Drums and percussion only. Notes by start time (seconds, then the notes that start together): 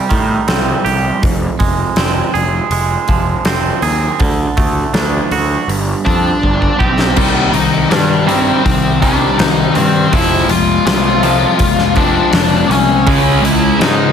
0.10 kick, open hi-hat
0.48 snare, open hi-hat
0.86 open hi-hat
1.23 kick, open hi-hat
1.60 kick, open hi-hat
1.96 snare, open hi-hat
2.35 open hi-hat
2.71 open hi-hat
3.08 kick, open hi-hat
3.45 snare, open hi-hat
3.82 open hi-hat
4.20 kick, open hi-hat
4.57 kick, open hi-hat
4.94 snare, open hi-hat
5.31 open hi-hat
5.69 open hi-hat
6.06 kick, open hi-hat
6.43 kick
6.62 kick
6.80 kick
6.99 snare
7.16 kick, crash
7.54 open hi-hat
7.91 snare, open hi-hat
8.29 open hi-hat
8.66 kick, open hi-hat
9.02 kick, open hi-hat
9.39 snare, open hi-hat
9.75 open hi-hat
10.13 kick, open hi-hat
10.49 open hi-hat
10.87 snare, open hi-hat
11.23 open hi-hat
11.59 kick, open hi-hat
11.78 snare
11.96 kick, open hi-hat
12.33 snare, open hi-hat
12.71 open hi-hat
13.07 kick, open hi-hat
13.45 open hi-hat
13.81 snare, open hi-hat